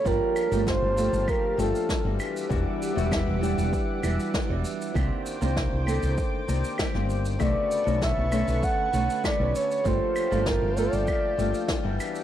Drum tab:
SH |x-xxx-xxx-xxx-xx|x-xxx-xxx-xxx-xx|x-xxx-xxx-xxx-xx|x-xxx-xxx-xxx-xx|
CL |--x-----x-----x-|----x-----x-----|x-----x-----x---|x-----x-----x---|
SD |----o-------o---|----o-------o---|----o-------oo--|----o-------o---|
BD |o---o---o---o---|o---o---o---o---|o---o---o---o---|o---o---o---o---|

SH |x-xxx-xxx-xxx-xx|
CL |--x-----x-----x-|
SD |----o-------o---|
BD |o---o---o---o---|